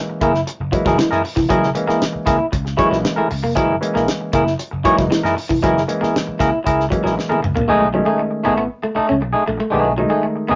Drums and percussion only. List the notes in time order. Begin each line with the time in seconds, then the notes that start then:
0.21 kick, closed hi-hat
0.34 snare
0.47 closed hi-hat
0.73 kick, closed hi-hat
0.86 kick, snare
0.99 snare, closed hi-hat
1.12 snare
1.25 open hi-hat
1.37 kick, snare
1.50 kick, closed hi-hat
1.63 snare
1.75 closed hi-hat
1.89 snare
2.02 snare, closed hi-hat
2.27 kick, snare, closed hi-hat
2.53 kick, closed hi-hat
2.66 snare
2.79 kick, closed hi-hat
2.92 snare
3.05 snare, closed hi-hat
3.31 open hi-hat
3.57 kick, closed hi-hat
3.83 closed hi-hat
3.96 snare
4.08 snare, closed hi-hat
4.33 kick, closed hi-hat
4.47 snare
4.59 closed hi-hat
4.85 kick, closed hi-hat
4.99 kick, snare
5.12 snare, closed hi-hat
5.25 snare
5.38 open hi-hat
5.51 kick
5.64 kick, closed hi-hat
5.77 snare
5.89 closed hi-hat
6.03 snare
6.16 snare, closed hi-hat
6.40 kick, snare, closed hi-hat
6.67 kick, closed hi-hat
6.80 snare
6.92 kick, closed hi-hat
7.06 snare
7.19 snare
7.32 high tom
7.44 mid tom
7.57 floor tom